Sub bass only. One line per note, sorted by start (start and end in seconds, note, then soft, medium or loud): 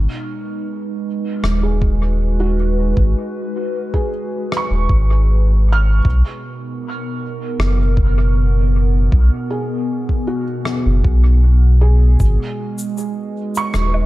1.43 2.93 D#1 medium
2.97 3.15 G#1 medium
4.70 4.87 D#1 medium
4.89 6.01 G#1 medium
6.05 6.22 B1 loud
7.59 9.09 F#1 medium
9.12 9.30 B1 medium
10.86 11.02 F#1 medium
11.04 12.16 B1 medium
12.20 12.38 G#1 medium
13.74 14.06 D#1 medium